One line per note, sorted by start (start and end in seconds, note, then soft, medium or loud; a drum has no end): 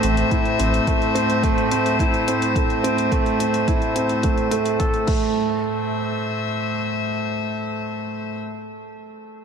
0.00 0.23 A1 medium
0.00 5.07 A2 medium
0.00 0.87 A3 medium
0.00 5.07 A3 medium
0.00 0.03 C4 medium
0.00 0.19 C4 medium
0.00 0.31 E4 medium
0.00 5.08 C5 medium
0.00 5.08 E5 medium
0.00 closed hi-hat medium
0.17 closed hi-hat soft
0.31 0.58 E4 medium
0.31 kick medium
0.31 closed hi-hat soft
0.45 closed hi-hat soft
0.59 0.79 A1 medium
0.59 0.86 C4 medium
0.59 closed hi-hat medium
0.74 closed hi-hat soft
0.87 1.14 A3 medium
0.87 kick loud
0.87 closed hi-hat soft
1.02 closed hi-hat soft
1.15 1.42 C4 medium
1.15 closed hi-hat medium
1.30 closed hi-hat soft
1.43 1.59 A3 medium
1.43 kick loud
1.43 closed hi-hat soft
1.58 closed hi-hat soft
1.71 1.87 C4 medium
1.71 closed hi-hat medium
1.86 closed hi-hat soft
1.99 2.26 E4 medium
1.99 kick medium
1.99 closed hi-hat soft
2.14 closed hi-hat soft
2.28 2.54 C4 medium
2.28 closed hi-hat medium
2.42 closed hi-hat soft
2.56 2.82 A3 medium
2.56 kick medium
2.56 closed hi-hat soft
2.70 closed hi-hat soft
2.84 3.10 C4 medium
2.84 closed hi-hat medium
2.98 closed hi-hat soft
3.11 3.27 A3 medium
3.11 kick medium
3.11 closed hi-hat soft
3.26 closed hi-hat soft
3.39 3.55 C4 medium
3.39 closed hi-hat medium
3.54 closed hi-hat soft
3.68 3.94 E4 medium
3.68 kick loud
3.68 closed hi-hat soft
3.82 closed hi-hat soft
3.96 4.22 C4 medium
3.96 closed hi-hat medium
4.09 closed hi-hat soft
4.23 4.50 A3 medium
4.23 kick medium
4.23 closed hi-hat soft
4.38 closed hi-hat soft
4.51 4.78 A3 medium
4.51 closed hi-hat medium
4.66 closed hi-hat soft
4.79 5.06 A4 medium
4.79 kick medium
4.79 closed hi-hat soft
4.94 closed hi-hat soft
5.07 8.36 A2 medium
5.07 5.60 A3 medium
5.07 kick loud
5.07 crash medium
5.16 8.36 A3 medium
5.53 8.36 C5 medium
5.61 8.36 E5 medium